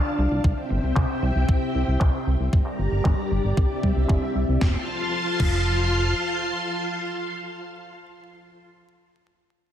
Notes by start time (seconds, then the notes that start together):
Already playing: D4 D5 F5 A5
0.05 closed hi-hat
0.18 C2, closed hi-hat
0.31 C2, closed hi-hat
0.44 C2 C4 C5 E5 G5, kick, closed hi-hat
0.57 closed hi-hat
0.70 G1, closed hi-hat
0.83 C2, closed hi-hat
0.96 C2, kick, clap, closed hi-hat
1.10 closed hi-hat
1.22 C2, closed hi-hat
1.36 C2, closed hi-hat
1.48 C2, kick, closed hi-hat
1.62 closed hi-hat
1.75 C2, closed hi-hat
1.88 C2, closed hi-hat
2.01 C2, kick, clap
2.14 closed hi-hat
2.27 C2, closed hi-hat
2.40 C2, closed hi-hat
2.53 G1 G3 G4 D5 A#5, kick, closed hi-hat
2.66 clap, closed hi-hat
2.79 G1, closed hi-hat
2.92 G1, closed hi-hat
3.05 G1, kick, clap
3.18 closed hi-hat
3.31 G1, closed hi-hat
3.44 G1, closed hi-hat
3.57 C2 C4 E5, kick, closed hi-hat
3.70 closed hi-hat
3.83 C2, kick
3.96 C2, closed hi-hat
4.09 G1, kick, clap
4.35 C2
4.49 C2
4.61 F1 F4 F5 A5 C6, kick, snare
5.40 F1, kick, crash